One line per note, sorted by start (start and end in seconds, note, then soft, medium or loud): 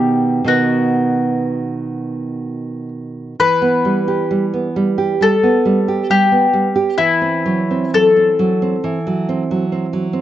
0.00 0.43 B2 medium
0.00 0.43 D#3 medium
0.00 0.44 B3 soft
0.00 0.44 G4 medium
0.44 3.34 B2 medium
0.44 3.35 D#3 soft
0.44 3.35 B3 soft
0.44 2.88 F#4 medium
3.40 5.17 E3 medium
3.40 5.17 B4 medium
3.62 3.99 B3 medium
3.85 4.22 G3 medium
4.08 4.44 G4 soft
4.31 4.67 G3 soft
4.54 4.90 B3 soft
4.76 5.12 G3 medium
4.98 5.34 G4 soft
5.21 5.56 G3 soft
5.21 6.06 A4 medium
5.43 5.79 B3 soft
5.65 6.01 G3 medium
5.88 6.23 G4 soft
6.10 6.45 G3 soft
6.10 6.95 G4 medium
6.32 6.67 B3 soft
6.53 6.89 G3 soft
6.76 6.98 G4 soft
6.98 8.80 E3 medium
6.98 7.90 E4 medium
7.21 7.61 C4 soft
7.46 7.85 F#3 soft
7.71 8.08 C4 soft
7.94 8.30 F#3 soft
7.94 10.21 A4 medium
8.17 8.52 C4 soft
8.39 8.75 F#3 soft
8.62 8.98 C4 soft
8.84 10.21 E3 medium
9.07 9.42 F#3 soft
9.29 9.64 C4 soft
9.51 9.85 F#3 soft
9.72 10.06 C4 soft
9.93 10.21 F#3 soft
10.13 10.21 C4 soft